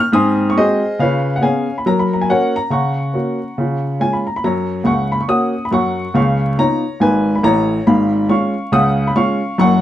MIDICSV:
0, 0, Header, 1, 2, 480
1, 0, Start_track
1, 0, Key_signature, 6, "major"
1, 0, Tempo, 430108
1, 1106, Time_signature, 4, 2, 24, 8
1, 10952, End_track
2, 0, Start_track
2, 0, Title_t, "Upright piano"
2, 0, Program_c, 0, 0
2, 0, Note_on_c, 0, 89, 114
2, 138, Note_on_c, 0, 44, 86
2, 149, Note_on_c, 0, 87, 98
2, 150, Note_off_c, 0, 89, 0
2, 161, Note_on_c, 0, 80, 65
2, 166, Note_on_c, 0, 60, 68
2, 169, Note_on_c, 0, 84, 68
2, 361, Control_c, 0, 64, 127
2, 425, Note_off_c, 0, 60, 0
2, 516, Note_off_c, 0, 80, 0
2, 520, Note_off_c, 0, 84, 0
2, 537, Note_off_c, 0, 87, 0
2, 550, Note_off_c, 0, 44, 0
2, 555, Note_on_c, 0, 85, 79
2, 634, Note_on_c, 0, 56, 49
2, 635, Note_off_c, 0, 85, 0
2, 637, Control_c, 0, 64, 0
2, 638, Note_on_c, 0, 60, 50
2, 643, Note_on_c, 0, 75, 96
2, 646, Note_on_c, 0, 66, 63
2, 649, Note_on_c, 0, 72, 74
2, 654, Note_on_c, 0, 68, 69
2, 896, Note_off_c, 0, 56, 0
2, 899, Note_off_c, 0, 60, 0
2, 905, Note_off_c, 0, 66, 0
2, 1085, Note_off_c, 0, 72, 0
2, 1088, Note_off_c, 0, 68, 0
2, 1107, Note_on_c, 0, 49, 79
2, 1115, Note_off_c, 0, 75, 0
2, 1117, Note_on_c, 0, 77, 87
2, 1132, Note_on_c, 0, 73, 65
2, 1134, Note_on_c, 0, 71, 64
2, 1135, Note_on_c, 0, 65, 52
2, 1292, Control_c, 0, 64, 127
2, 1392, Note_off_c, 0, 65, 0
2, 1483, Note_off_c, 0, 73, 0
2, 1484, Note_off_c, 0, 71, 0
2, 1502, Note_off_c, 0, 77, 0
2, 1516, Note_off_c, 0, 49, 0
2, 1517, Note_on_c, 0, 78, 64
2, 1579, Note_on_c, 0, 59, 52
2, 1579, Note_on_c, 0, 61, 50
2, 1587, Note_on_c, 0, 68, 53
2, 1591, Note_on_c, 0, 80, 79
2, 1594, Note_on_c, 0, 73, 54
2, 1597, Note_off_c, 0, 78, 0
2, 1600, Control_c, 0, 64, 0
2, 1600, Note_on_c, 0, 77, 64
2, 1846, Note_off_c, 0, 59, 0
2, 1846, Note_off_c, 0, 61, 0
2, 1851, Note_off_c, 0, 68, 0
2, 1953, Note_off_c, 0, 73, 0
2, 1957, Note_off_c, 0, 77, 0
2, 1979, Note_off_c, 0, 80, 0
2, 1984, Note_on_c, 0, 83, 54
2, 2071, Note_off_c, 0, 83, 0
2, 2076, Note_on_c, 0, 54, 83
2, 2085, Note_on_c, 0, 82, 89
2, 2102, Note_on_c, 0, 70, 52
2, 2226, Note_off_c, 0, 82, 0
2, 2226, Note_on_c, 0, 83, 65
2, 2292, Control_c, 0, 64, 127
2, 2357, Note_off_c, 0, 70, 0
2, 2371, Note_off_c, 0, 83, 0
2, 2382, Note_on_c, 0, 82, 58
2, 2465, Note_off_c, 0, 82, 0
2, 2471, Note_on_c, 0, 80, 70
2, 2481, Note_off_c, 0, 54, 0
2, 2555, Note_off_c, 0, 80, 0
2, 2558, Note_on_c, 0, 58, 44
2, 2559, Control_c, 0, 64, 0
2, 2564, Note_on_c, 0, 61, 46
2, 2565, Note_on_c, 0, 66, 55
2, 2567, Note_on_c, 0, 78, 86
2, 2579, Note_on_c, 0, 73, 66
2, 2583, Note_on_c, 0, 70, 59
2, 2819, Note_off_c, 0, 58, 0
2, 2824, Note_off_c, 0, 61, 0
2, 2824, Note_off_c, 0, 66, 0
2, 2843, Note_off_c, 0, 73, 0
2, 2845, Note_off_c, 0, 70, 0
2, 2856, Note_off_c, 0, 78, 0
2, 2857, Note_on_c, 0, 82, 80
2, 3015, Note_on_c, 0, 49, 62
2, 3021, Note_off_c, 0, 82, 0
2, 3028, Note_on_c, 0, 85, 72
2, 3038, Note_on_c, 0, 82, 53
2, 3046, Note_on_c, 0, 78, 63
2, 3236, Control_c, 0, 64, 127
2, 3429, Note_off_c, 0, 49, 0
2, 3499, Note_on_c, 0, 58, 37
2, 3506, Note_on_c, 0, 61, 41
2, 3510, Note_on_c, 0, 66, 50
2, 3524, Control_c, 0, 64, 0
2, 3765, Note_off_c, 0, 58, 0
2, 3771, Note_off_c, 0, 61, 0
2, 3773, Note_off_c, 0, 66, 0
2, 3993, Note_on_c, 0, 49, 68
2, 4019, Note_on_c, 0, 65, 43
2, 4179, Control_c, 0, 64, 127
2, 4275, Note_off_c, 0, 65, 0
2, 4399, Note_off_c, 0, 49, 0
2, 4463, Note_on_c, 0, 61, 41
2, 4467, Note_on_c, 0, 56, 38
2, 4475, Note_on_c, 0, 80, 70
2, 4477, Note_on_c, 0, 65, 48
2, 4479, Control_c, 0, 64, 0
2, 4611, Note_on_c, 0, 83, 51
2, 4621, Note_off_c, 0, 80, 0
2, 4727, Note_off_c, 0, 82, 0
2, 4728, Note_off_c, 0, 61, 0
2, 4732, Note_off_c, 0, 56, 0
2, 4732, Note_off_c, 0, 78, 0
2, 4738, Note_off_c, 0, 65, 0
2, 4762, Note_on_c, 0, 82, 52
2, 4764, Note_off_c, 0, 83, 0
2, 4767, Note_off_c, 0, 85, 0
2, 4855, Note_off_c, 0, 82, 0
2, 4869, Note_on_c, 0, 83, 64
2, 4954, Note_off_c, 0, 83, 0
2, 4954, Note_on_c, 0, 54, 71
2, 4958, Note_on_c, 0, 82, 74
2, 4960, Note_on_c, 0, 42, 73
2, 4976, Note_on_c, 0, 73, 60
2, 5173, Control_c, 0, 64, 127
2, 5336, Note_off_c, 0, 54, 0
2, 5339, Note_off_c, 0, 42, 0
2, 5401, Note_on_c, 0, 49, 63
2, 5402, Note_on_c, 0, 37, 57
2, 5409, Note_off_c, 0, 73, 0
2, 5418, Note_on_c, 0, 85, 80
2, 5428, Note_on_c, 0, 78, 67
2, 5433, Note_off_c, 0, 82, 0
2, 5441, Control_c, 0, 64, 0
2, 5706, Note_off_c, 0, 78, 0
2, 5713, Note_on_c, 0, 83, 67
2, 5722, Note_off_c, 0, 85, 0
2, 5795, Note_off_c, 0, 49, 0
2, 5796, Note_off_c, 0, 37, 0
2, 5810, Note_off_c, 0, 83, 0
2, 5810, Note_on_c, 0, 85, 60
2, 5894, Note_on_c, 0, 58, 48
2, 5895, Note_on_c, 0, 66, 51
2, 5898, Note_on_c, 0, 61, 47
2, 5901, Note_on_c, 0, 87, 87
2, 5904, Note_off_c, 0, 85, 0
2, 5914, Note_on_c, 0, 78, 55
2, 6162, Note_off_c, 0, 58, 0
2, 6162, Note_off_c, 0, 66, 0
2, 6165, Note_off_c, 0, 61, 0
2, 6273, Note_off_c, 0, 78, 0
2, 6294, Note_off_c, 0, 87, 0
2, 6307, Note_on_c, 0, 83, 61
2, 6376, Note_on_c, 0, 42, 66
2, 6388, Note_on_c, 0, 54, 66
2, 6389, Note_on_c, 0, 85, 85
2, 6393, Note_off_c, 0, 83, 0
2, 6401, Note_on_c, 0, 78, 69
2, 6764, Note_off_c, 0, 42, 0
2, 6772, Note_off_c, 0, 54, 0
2, 6841, Note_off_c, 0, 78, 0
2, 6851, Note_off_c, 0, 85, 0
2, 6854, Note_on_c, 0, 37, 68
2, 6857, Note_on_c, 0, 49, 75
2, 6868, Note_on_c, 0, 85, 83
2, 6878, Note_on_c, 0, 77, 69
2, 7079, Control_c, 0, 64, 127
2, 7267, Note_off_c, 0, 37, 0
2, 7269, Note_off_c, 0, 49, 0
2, 7319, Note_off_c, 0, 77, 0
2, 7337, Note_on_c, 0, 59, 42
2, 7347, Note_off_c, 0, 85, 0
2, 7349, Note_on_c, 0, 63, 49
2, 7353, Note_on_c, 0, 82, 98
2, 7356, Note_on_c, 0, 65, 49
2, 7362, Control_c, 0, 64, 0
2, 7362, Note_on_c, 0, 73, 65
2, 7604, Note_off_c, 0, 59, 0
2, 7612, Note_off_c, 0, 63, 0
2, 7617, Note_off_c, 0, 65, 0
2, 7801, Note_off_c, 0, 73, 0
2, 7814, Note_on_c, 0, 32, 72
2, 7816, Note_on_c, 0, 44, 65
2, 7828, Note_on_c, 0, 80, 83
2, 7830, Note_off_c, 0, 82, 0
2, 7838, Note_on_c, 0, 71, 64
2, 8195, Note_off_c, 0, 71, 0
2, 8209, Note_on_c, 0, 83, 54
2, 8216, Note_off_c, 0, 80, 0
2, 8227, Note_off_c, 0, 32, 0
2, 8228, Note_off_c, 0, 44, 0
2, 8294, Note_on_c, 0, 45, 76
2, 8296, Note_on_c, 0, 33, 83
2, 8303, Note_off_c, 0, 83, 0
2, 8304, Note_on_c, 0, 82, 101
2, 8328, Note_on_c, 0, 73, 71
2, 8682, Note_off_c, 0, 45, 0
2, 8684, Note_off_c, 0, 33, 0
2, 8764, Note_off_c, 0, 73, 0
2, 8781, Note_on_c, 0, 32, 70
2, 8783, Note_on_c, 0, 83, 73
2, 8785, Note_off_c, 0, 82, 0
2, 8785, Note_on_c, 0, 44, 78
2, 8803, Note_on_c, 0, 77, 57
2, 8993, Control_c, 0, 64, 127
2, 9190, Note_off_c, 0, 32, 0
2, 9193, Note_off_c, 0, 44, 0
2, 9241, Note_off_c, 0, 77, 0
2, 9253, Note_on_c, 0, 56, 49
2, 9253, Note_on_c, 0, 61, 53
2, 9256, Note_on_c, 0, 85, 79
2, 9258, Note_on_c, 0, 65, 54
2, 9264, Note_off_c, 0, 83, 0
2, 9274, Note_on_c, 0, 77, 68
2, 9278, Control_c, 0, 64, 0
2, 9520, Note_off_c, 0, 56, 0
2, 9520, Note_off_c, 0, 61, 0
2, 9524, Note_off_c, 0, 65, 0
2, 9716, Note_off_c, 0, 77, 0
2, 9731, Note_on_c, 0, 49, 80
2, 9738, Note_on_c, 0, 37, 81
2, 9740, Note_off_c, 0, 85, 0
2, 9740, Note_on_c, 0, 87, 97
2, 9750, Note_on_c, 0, 78, 72
2, 10110, Note_off_c, 0, 78, 0
2, 10127, Note_on_c, 0, 83, 67
2, 10131, Note_off_c, 0, 87, 0
2, 10144, Note_off_c, 0, 49, 0
2, 10148, Note_off_c, 0, 37, 0
2, 10219, Note_on_c, 0, 56, 55
2, 10220, Note_on_c, 0, 61, 55
2, 10221, Note_off_c, 0, 83, 0
2, 10221, Note_on_c, 0, 85, 88
2, 10228, Note_on_c, 0, 65, 58
2, 10232, Note_on_c, 0, 77, 76
2, 10484, Note_off_c, 0, 56, 0
2, 10485, Note_off_c, 0, 61, 0
2, 10491, Note_off_c, 0, 65, 0
2, 10675, Note_off_c, 0, 77, 0
2, 10691, Note_off_c, 0, 85, 0
2, 10695, Note_on_c, 0, 42, 86
2, 10696, Note_on_c, 0, 30, 82
2, 10707, Note_on_c, 0, 85, 96
2, 10723, Note_on_c, 0, 78, 82
2, 10932, Control_c, 0, 64, 127
2, 10952, Note_off_c, 0, 30, 0
2, 10952, Note_off_c, 0, 42, 0
2, 10952, Note_off_c, 0, 78, 0
2, 10952, Note_off_c, 0, 85, 0
2, 10952, End_track
0, 0, End_of_file